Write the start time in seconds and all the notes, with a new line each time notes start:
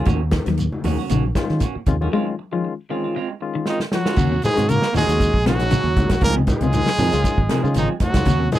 0.05 D#2 A#3 C#4 F#4, muted clean electric guitar stroke, kick, closed hi-hat, low conga, shekere
0.21 muted clean electric guitar stroke
0.31 muted clean electric guitar stroke, kick, snare, closed hi-hat, high conga, shekere
0.46 D#2 F#3, muted clean electric guitar stroke, snare, closed hi-hat, high conga
0.58 muted clean electric guitar stroke, closed hi-hat, shekere
0.72 low conga
0.84 D#2 D#3 A#3 C#4 F#4, open hi-hat, high conga, low conga, shekere
0.99 C#4 F#4
1.09 A#1 C#3 A#3 C#4 F#4, closed hi-hat, high conga, shekere
1.25 muted clean electric guitar stroke
1.35 D#3 G#3 C#4 F4, kick, snare, closed hi-hat, high conga, shekere
1.49 D#3, snare
1.60 A#3 C#4 F#4, kick, closed hi-hat, shekere
1.75 muted clean electric guitar stroke, muted fingered electric bass stroke
1.86 D#2 C3 D#3 G#3 C#4 F4, muted clean electric guitar stroke, kick, closed hi-hat, shekere
2.01 D#3 G#3 C#4 F4 F#4, high conga
2.12 D#3 G#3 C4 C#4 F4
2.27 muted clean electric guitar stroke
2.39 muted clean electric guitar stroke
2.52 D#3 F3 G#3 C#4 F4, muted clean electric guitar stroke
2.64 muted clean electric guitar stroke
2.90 D#3 G#3 C4 C#4 F4
3.04 C4 F4
3.16 G#3 C4 F4, muted clean electric guitar stroke
3.29 muted clean electric guitar stroke
3.41 D#3 G#3 C#4 F4, muted clean electric guitar stroke
3.55 D#3
3.66 D#3 G#3 C4 D#4 F4, snare
3.80 muted clean electric guitar stroke, snare
3.92 F3 F#3 F#4, muted clean electric guitar stroke, snare
4.05 D#3 G#3 C#4 F4, muted clean electric guitar stroke, snare
4.16 D#2 C#3 A#3 C#4 F#4, kick, snare, crash, shekere
4.32 C3
4.42 G#3 G#4, muted clean electric guitar stroke, snare, closed hi-hat, high conga, shekere
4.56 G#2 C3 D#3 G#3 C#4 F#4, snare, closed hi-hat, shekere
4.68 C#3 A#3 A#4, muted clean electric guitar stroke, closed hi-hat, shekere
4.82 muted clean electric guitar stroke, snare
4.93 D#2 A#3 C#4 F#4, open hi-hat, high conga, low conga, shekere
4.97 G#3 G#4
5.07 D#2 D#3 G#3 C#4 F#4, muted clean electric guitar stroke, closed hi-hat, shekere
5.20 kick, closed hi-hat, shekere
5.34 A#1, kick
5.45 C3 F#3 A#3 C#4 F#4, snare, closed hi-hat, high conga, shekere
5.59 D#3 G#3 C#4 F#4, muted clean electric guitar stroke, snare, closed hi-hat, shekere
5.71 C#3 A#3 C#4 F#4, closed hi-hat, shekere
5.84 D#2
5.96 C#2, kick, closed hi-hat, high conga, low conga, shekere
6.09 A#1 D#3 G#3 C#4 F#4, muted clean electric guitar stroke, kick, snare, closed hi-hat, high conga, shekere
6.21 C#2 F3 G#3 A#3 C4 G#4 A#4, muted clean electric guitar stroke, kick, closed hi-hat, low conga, shekere
6.36 C3
6.47 G#3, muted clean electric guitar stroke, kick, snare, closed hi-hat, high conga, shekere
6.52 G#4
6.61 C#2 C3 D#3 G#3 C#4 F4, closed hi-hat, shekere
6.73 C#3, muted clean electric guitar stroke, closed hi-hat, high conga, low conga, shekere
6.87 snare
6.99 F2 F3 G#3 C4 G#4, open hi-hat, high conga, low conga, shekere
7.12 C#2 D#3 G#3 C#4 F4, muted clean electric guitar stroke, closed hi-hat, shekere
7.24 muted clean electric guitar stroke, kick, closed hi-hat, high conga, shekere
7.38 G#1, kick
7.49 C3 F3 G#3 C4 G#4, snare, closed hi-hat, high conga, shekere
7.62 C#3 D#3 G#3 C#4 F4, muted clean electric guitar stroke, shekere
7.74 G#1 C#3 D#3 F3 G#3 C4 D#4 G#4, closed hi-hat, shekere
8.00 F#3 F#4, muted fingered electric bass stroke, muted clean electric guitar stroke, kick, snare, closed hi-hat, high conga, low conga, shekere
8.14 C#2 D#3 G#3 C#4 F4, muted clean electric guitar stroke, kick, snare, closed hi-hat, high conga, shekere
8.25 D#2 C#3 A#3 C#4 F#4, kick, snare, closed hi-hat, shekere
8.40 C3
8.52 G#3 G#4, muted clean electric guitar stroke, snare, closed hi-hat, high conga, shekere